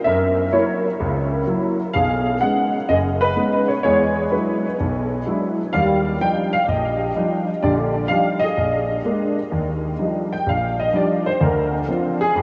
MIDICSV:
0, 0, Header, 1, 2, 480
1, 0, Start_track
1, 0, Tempo, 473186
1, 53, Time_signature, 4, 2, 24, 8
1, 12599, End_track
2, 0, Start_track
2, 0, Title_t, "Grand piano"
2, 0, Program_c, 0, 0
2, 44, Note_on_c, 0, 76, 89
2, 58, Note_on_c, 0, 42, 67
2, 70, Note_on_c, 0, 70, 72
2, 474, Note_off_c, 0, 42, 0
2, 535, Note_on_c, 0, 54, 42
2, 535, Note_on_c, 0, 73, 71
2, 536, Note_on_c, 0, 58, 42
2, 542, Note_off_c, 0, 70, 0
2, 542, Note_on_c, 0, 64, 55
2, 544, Note_off_c, 0, 76, 0
2, 557, Note_on_c, 0, 70, 60
2, 873, Note_off_c, 0, 54, 0
2, 874, Note_off_c, 0, 58, 0
2, 877, Note_off_c, 0, 64, 0
2, 1015, Note_on_c, 0, 37, 67
2, 1016, Note_on_c, 0, 49, 60
2, 1433, Note_off_c, 0, 37, 0
2, 1433, Note_off_c, 0, 49, 0
2, 1493, Note_on_c, 0, 54, 49
2, 1498, Note_on_c, 0, 58, 44
2, 1503, Note_on_c, 0, 64, 54
2, 1778, Note_off_c, 0, 73, 0
2, 1790, Note_off_c, 0, 70, 0
2, 1833, Note_off_c, 0, 54, 0
2, 1836, Note_off_c, 0, 58, 0
2, 1838, Note_off_c, 0, 64, 0
2, 1963, Note_on_c, 0, 77, 90
2, 1980, Note_on_c, 0, 35, 65
2, 1987, Note_on_c, 0, 68, 61
2, 2396, Note_off_c, 0, 35, 0
2, 2442, Note_on_c, 0, 78, 84
2, 2456, Note_on_c, 0, 56, 42
2, 2461, Note_on_c, 0, 59, 38
2, 2462, Note_on_c, 0, 61, 39
2, 2464, Note_off_c, 0, 77, 0
2, 2467, Note_on_c, 0, 63, 52
2, 2795, Note_off_c, 0, 56, 0
2, 2798, Note_off_c, 0, 59, 0
2, 2798, Note_off_c, 0, 61, 0
2, 2801, Note_off_c, 0, 63, 0
2, 2895, Note_off_c, 0, 78, 0
2, 2902, Note_off_c, 0, 68, 0
2, 2930, Note_on_c, 0, 30, 58
2, 2930, Note_on_c, 0, 75, 88
2, 2933, Note_on_c, 0, 42, 59
2, 2948, Note_on_c, 0, 68, 59
2, 3003, Note_off_c, 0, 75, 0
2, 3254, Note_on_c, 0, 71, 98
2, 3351, Note_off_c, 0, 30, 0
2, 3352, Note_off_c, 0, 42, 0
2, 3407, Note_on_c, 0, 56, 50
2, 3413, Note_on_c, 0, 61, 48
2, 3414, Note_on_c, 0, 59, 44
2, 3415, Note_on_c, 0, 63, 59
2, 3703, Note_off_c, 0, 71, 0
2, 3734, Note_on_c, 0, 73, 71
2, 3751, Note_off_c, 0, 56, 0
2, 3754, Note_off_c, 0, 59, 0
2, 3754, Note_off_c, 0, 61, 0
2, 3755, Note_off_c, 0, 63, 0
2, 3785, Note_off_c, 0, 73, 0
2, 3862, Note_off_c, 0, 68, 0
2, 3887, Note_on_c, 0, 73, 82
2, 3900, Note_on_c, 0, 40, 63
2, 3902, Note_on_c, 0, 56, 73
2, 3909, Note_on_c, 0, 68, 55
2, 4316, Note_off_c, 0, 40, 0
2, 4317, Note_off_c, 0, 56, 0
2, 4368, Note_on_c, 0, 71, 63
2, 4376, Note_on_c, 0, 54, 44
2, 4380, Note_on_c, 0, 56, 43
2, 4385, Note_on_c, 0, 64, 50
2, 4386, Note_on_c, 0, 62, 46
2, 4387, Note_off_c, 0, 73, 0
2, 4716, Note_off_c, 0, 54, 0
2, 4717, Note_off_c, 0, 56, 0
2, 4720, Note_off_c, 0, 64, 0
2, 4721, Note_off_c, 0, 62, 0
2, 4819, Note_off_c, 0, 71, 0
2, 4823, Note_off_c, 0, 68, 0
2, 4868, Note_on_c, 0, 35, 62
2, 5280, Note_off_c, 0, 35, 0
2, 5340, Note_on_c, 0, 54, 51
2, 5342, Note_on_c, 0, 56, 49
2, 5345, Note_on_c, 0, 62, 47
2, 5349, Note_on_c, 0, 64, 58
2, 5677, Note_off_c, 0, 54, 0
2, 5679, Note_off_c, 0, 56, 0
2, 5680, Note_off_c, 0, 62, 0
2, 5682, Note_off_c, 0, 64, 0
2, 5810, Note_on_c, 0, 77, 89
2, 5821, Note_on_c, 0, 55, 75
2, 5822, Note_on_c, 0, 39, 68
2, 5825, Note_on_c, 0, 74, 68
2, 6237, Note_off_c, 0, 39, 0
2, 6237, Note_off_c, 0, 55, 0
2, 6260, Note_off_c, 0, 77, 0
2, 6293, Note_on_c, 0, 53, 44
2, 6296, Note_on_c, 0, 55, 38
2, 6300, Note_on_c, 0, 62, 46
2, 6301, Note_on_c, 0, 63, 52
2, 6303, Note_on_c, 0, 79, 86
2, 6601, Note_off_c, 0, 79, 0
2, 6622, Note_on_c, 0, 77, 91
2, 6634, Note_off_c, 0, 53, 0
2, 6635, Note_off_c, 0, 55, 0
2, 6638, Note_off_c, 0, 62, 0
2, 6638, Note_off_c, 0, 63, 0
2, 6720, Note_off_c, 0, 74, 0
2, 6724, Note_off_c, 0, 77, 0
2, 6735, Note_on_c, 0, 74, 51
2, 6775, Note_on_c, 0, 34, 59
2, 6780, Note_off_c, 0, 74, 0
2, 6784, Note_on_c, 0, 75, 70
2, 6795, Note_on_c, 0, 67, 53
2, 7193, Note_off_c, 0, 34, 0
2, 7258, Note_on_c, 0, 53, 52
2, 7263, Note_on_c, 0, 55, 50
2, 7266, Note_on_c, 0, 63, 58
2, 7267, Note_on_c, 0, 62, 54
2, 7543, Note_off_c, 0, 75, 0
2, 7596, Note_off_c, 0, 53, 0
2, 7599, Note_off_c, 0, 55, 0
2, 7600, Note_off_c, 0, 63, 0
2, 7601, Note_off_c, 0, 62, 0
2, 7706, Note_off_c, 0, 67, 0
2, 7736, Note_on_c, 0, 74, 82
2, 7741, Note_on_c, 0, 34, 68
2, 7743, Note_on_c, 0, 50, 69
2, 7756, Note_on_c, 0, 67, 60
2, 8156, Note_off_c, 0, 34, 0
2, 8157, Note_off_c, 0, 50, 0
2, 8197, Note_on_c, 0, 77, 88
2, 8218, Note_on_c, 0, 53, 46
2, 8219, Note_on_c, 0, 55, 42
2, 8225, Note_on_c, 0, 62, 39
2, 8225, Note_on_c, 0, 63, 49
2, 8231, Note_off_c, 0, 74, 0
2, 8507, Note_off_c, 0, 77, 0
2, 8516, Note_on_c, 0, 75, 90
2, 8557, Note_off_c, 0, 53, 0
2, 8557, Note_off_c, 0, 55, 0
2, 8559, Note_on_c, 0, 68, 54
2, 8560, Note_off_c, 0, 62, 0
2, 8560, Note_off_c, 0, 63, 0
2, 8666, Note_off_c, 0, 67, 0
2, 8695, Note_on_c, 0, 34, 59
2, 9113, Note_off_c, 0, 34, 0
2, 9125, Note_off_c, 0, 75, 0
2, 9176, Note_on_c, 0, 56, 50
2, 9181, Note_on_c, 0, 58, 44
2, 9187, Note_on_c, 0, 62, 57
2, 9469, Note_off_c, 0, 68, 0
2, 9515, Note_off_c, 0, 56, 0
2, 9517, Note_off_c, 0, 58, 0
2, 9521, Note_off_c, 0, 62, 0
2, 9653, Note_on_c, 0, 39, 67
2, 10072, Note_off_c, 0, 39, 0
2, 10129, Note_on_c, 0, 53, 44
2, 10133, Note_on_c, 0, 55, 41
2, 10135, Note_on_c, 0, 62, 45
2, 10135, Note_on_c, 0, 63, 55
2, 10472, Note_off_c, 0, 53, 0
2, 10474, Note_off_c, 0, 55, 0
2, 10474, Note_on_c, 0, 79, 77
2, 10475, Note_off_c, 0, 62, 0
2, 10475, Note_off_c, 0, 63, 0
2, 10613, Note_on_c, 0, 34, 62
2, 10620, Note_off_c, 0, 79, 0
2, 10640, Note_on_c, 0, 77, 76
2, 10942, Note_off_c, 0, 77, 0
2, 10951, Note_on_c, 0, 75, 82
2, 11032, Note_off_c, 0, 34, 0
2, 11083, Note_on_c, 0, 53, 49
2, 11090, Note_on_c, 0, 55, 49
2, 11092, Note_on_c, 0, 62, 48
2, 11097, Note_on_c, 0, 63, 58
2, 11098, Note_off_c, 0, 75, 0
2, 11115, Note_on_c, 0, 74, 77
2, 11419, Note_off_c, 0, 74, 0
2, 11424, Note_on_c, 0, 72, 82
2, 11428, Note_off_c, 0, 53, 0
2, 11432, Note_off_c, 0, 55, 0
2, 11433, Note_off_c, 0, 62, 0
2, 11435, Note_off_c, 0, 63, 0
2, 11571, Note_on_c, 0, 38, 68
2, 11574, Note_off_c, 0, 72, 0
2, 11591, Note_on_c, 0, 70, 77
2, 11897, Note_off_c, 0, 70, 0
2, 11897, Note_on_c, 0, 62, 50
2, 11991, Note_off_c, 0, 38, 0
2, 12040, Note_off_c, 0, 62, 0
2, 12047, Note_on_c, 0, 53, 44
2, 12052, Note_on_c, 0, 60, 45
2, 12055, Note_on_c, 0, 62, 48
2, 12077, Note_on_c, 0, 65, 64
2, 12380, Note_off_c, 0, 65, 0
2, 12384, Note_on_c, 0, 68, 96
2, 12390, Note_off_c, 0, 53, 0
2, 12393, Note_off_c, 0, 60, 0
2, 12394, Note_off_c, 0, 62, 0
2, 12529, Note_on_c, 0, 43, 66
2, 12534, Note_off_c, 0, 68, 0
2, 12553, Note_on_c, 0, 67, 76
2, 12599, Note_off_c, 0, 43, 0
2, 12599, Note_off_c, 0, 67, 0
2, 12599, End_track
0, 0, End_of_file